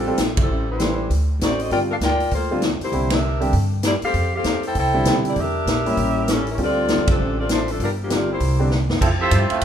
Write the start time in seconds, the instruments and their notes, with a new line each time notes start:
Already playing: upright bass A1, saxophone section F3 C4 D4 A4
0.07 grand piano G3 C4 F4 A4
0.18 upright bass A#1, snare, closed hi-hat
0.37 kick, ride
0.41 saxophone section G3 C4 E4 A4
0.48 upright bass A1
0.71 saxophone section G3 E4 B4 C5
0.79 grand piano E3 A3 D4 G4, snare, closed hi-hat
1.10 upright bass D2, kick, open hi-hat
1.40 upright bass A1, saxophone section C4 F#4 A4 D5, snare, closed hi-hat
1.59 saxophone section C4 F#4 A4 D#5, open hi-hat
1.71 upright bass G1, grand piano D3 G3 C4 F4, saxophone section F4 A#4 D5 G5, kick, open hi-hat
1.90 saxophone section D4 A4 A#4 F5
2.00 upright bass D2, saxophone section F4 A#4 D5 G5, snare, closed hi-hat
2.20 open hi-hat
2.31 upright bass D2, saxophone section A#3 F4 A4 C5, kick, open hi-hat
2.51 grand piano D3 G3 C4 F4
2.62 snare, closed hi-hat
2.81 saxophone section A#3 E4 G4 C5, muted upright bass stroke, open hi-hat
2.92 upright bass C2, grand piano D3 G3 C4 E4, kick, open hi-hat
3.10 saxophone section D4 G4 A#4 E5, snare, ride
3.41 grand piano D3 G3 C4 G4, open hi-hat
3.53 upright bass G2, kick, open hi-hat
3.83 saxophone section A#3 E4 G4 D5, snare, closed hi-hat
4.02 saxophone section C4 G4 A4 F5, muted upright bass stroke, open hi-hat
4.14 upright bass F2, kick, open hi-hat
4.35 saxophone section C4 G4 A4 F5
4.44 upright bass E2, snare, closed hi-hat
4.63 saxophone section A4 G5, open hi-hat
4.67 saxophone section E4 C5
4.75 upright bass C2, saxophone section E4 A4 C5 G5, kick, open hi-hat
4.94 grand piano D3 G3 C4 E4
5.05 upright bass B2, snare, closed hi-hat
5.25 saxophone section A#3 E4 D5, open hi-hat
5.29 saxophone section G4
5.36 upright bass E2, kick, open hi-hat
5.40 saxophone section D4 G4 A#4 E5
5.65 upright bass A#1, snare, closed hi-hat
5.86 grand piano G3 A#3 C#4 E4, open hi-hat
5.97 upright bass A1, kick, open hi-hat
6.28 snare, closed hi-hat
6.32 saxophone section G3 C#4 E4 A4
6.47 open hi-hat
6.51 saxophone section G3 C#4 E4 A#4
6.58 upright bass D2, grand piano D3 G3 C4 F4, kick, open hi-hat
6.63 saxophone section C4 F4 A4 D5
6.88 snare, closed hi-hat
6.98 upright bass F2
7.07 upright bass C2, saxophone section F3 C4 D4 A4, kick, ride
7.19 upright bass A1
7.40 saxophone section C4 F4 A4 D5
7.49 saxophone section A3 D4 F4 C5, snare, closed hi-hat
7.68 saxophone section F3 C4 D4 A4, open hi-hat
7.80 upright bass G1, saxophone section G3 D4 F4 A#4, kick, open hi-hat
8.03 saxophone section F3 A#3 D4 G4
8.10 grand piano D3 G3 C4 F4, saxophone section A#3 F4 G4, snare, closed hi-hat
8.14 saxophone section D5
8.33 saxophone section A#3 E4 G4 C5
8.40 upright bass C2, kick, open hi-hat
8.59 grand piano D3 G3 C4 D4
8.71 snare
8.89 upright bass F#2, snare
9.01 upright bass F2, trombone section F3 C4 E4 A4, kick, crash
9.18 trombone section F3 C4 E4 G4, trumpet section F4 A4 C5 E5
9.31 upright bass G2, kick, hi-hat pedal, ride
9.49 trombone section A3 C4 E4 F4, muted upright bass stroke, ride
9.61 upright bass A2, ride